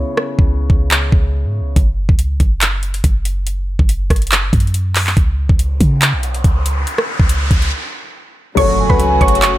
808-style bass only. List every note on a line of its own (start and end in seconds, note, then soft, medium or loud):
0.39 0.69 C#2 loud
0.70 1.11 C#2 loud
1.12 1.46 C#2 loud
1.45 1.62 G#2 loud
1.61 1.76 C#2 loud
1.76 2.08 F#1 loud
2.09 2.39 C#2 loud
2.40 3.01 F#1 loud
3.04 3.76 F#1 loud
3.79 4.09 F#1 loud
4.10 4.51 F#1 loud
4.53 5.14 F#2 loud
5.17 5.48 C#2 loud
5.49 5.79 C#2 loud
5.81 6.15 C#3 loud
6.13 6.43 B1 medium
6.44 6.85 C#2 loud
7.20 7.50 C#2 loud
7.51 7.71 C#2 loud
8.57 8.88 F#1 loud
8.90 9.20 C#2 loud
9.21 9.58 F#1 loud